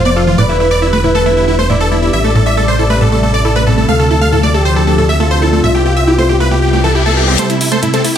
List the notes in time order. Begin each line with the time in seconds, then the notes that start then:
Already playing: F1 C5
0.05 B3 D5
0.16 F4 A4
0.27 E3 F4
0.38 E1 A2 B4 D5
0.49 A3 E4
0.60 A3 E4
0.71 D5
0.82 E4
0.93 A3 B4
1.04 A2 E4 B4
1.15 A3 A4
1.26 A3 E4
1.37 E4
1.48 E4
1.59 A3 C5
1.70 A2 E4 D5
1.80 A3 A4
1.91 A3 E4
2.02 E4
2.13 A1 E4 E5
2.24 A3 A4
2.35 A2 A4
2.46 A3 E5
2.57 A3 A4
2.68 C5
2.79 E4 A4
2.90 A3 B4
3.01 A2 A4
3.12 A3 A4
3.23 A3 A4
3.34 D5
3.45 E4 A4
3.56 A3 B4
3.67 A2 A4
3.78 A3 A4
3.89 D2 A3 A4 F5
3.99 A4
4.10 E4 A4
4.21 A3 F5
4.32 A2 A4
4.43 A3 D5
4.54 A3 G4 A4
4.65 C5
4.76 E4 A4
4.87 A3 A4
4.98 A2 A4
5.09 A3 E5
5.20 A3 F4 A4
5.31 C5
5.42 E4 A4
5.53 A3 A4
5.64 C2 A2 E5
5.75 A3 G4
5.86 A3 G4
5.97 E5
6.07 E4 G4
6.18 A3 C5
6.29 A2 G4
6.40 A3 B4
6.51 A3 G4, reverse cymbal
6.62 G4
6.73 A3 G4
6.84 E3 A4
6.95 E4 G4
7.06 A3 A4
7.17 G4 A4
7.28 C4 G4
7.39 A3 A4 C5, closed hi-hat, riser
7.50 E4, closed hi-hat
7.61 E4, open hi-hat
7.72 A3 A4 C5, closed hi-hat
7.83 A2 E4, closed hi-hat
7.94 A3 C4 A4, closed hi-hat
8.05 A3 E4, open hi-hat